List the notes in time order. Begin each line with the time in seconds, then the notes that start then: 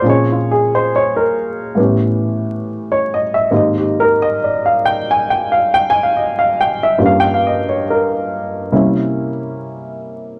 0.02 A#2 F3 C4
0.06 C#4 G#4 C#5
0.32 F4
0.51 G#4
0.75 C5
0.96 C#5
1.16 A#4
1.75 A2 E3 B3 C#4
1.80 G4
2.92 C#5
3.14 D#5
3.34 E5
3.50 G#2 D#3 A#3 C4 G4
3.56 D#5
3.78 G4
4.00 A#4
4.22 D#5
4.44 D5
4.66 F5
4.86 G5
5.11 G#5
5.30 G5
5.52 F5
5.74 G5
5.90 G#5
6.03 F5
6.17 D#5
6.39 F5
6.61 G5
6.83 E5
6.98 G2 F3 A#3 C#4 G4
7.06 F5
7.20 G5
7.34 F5
7.47 D#5
7.69 C#5
7.90 A#4
8.72 C3 G3 A#3 C#4 E4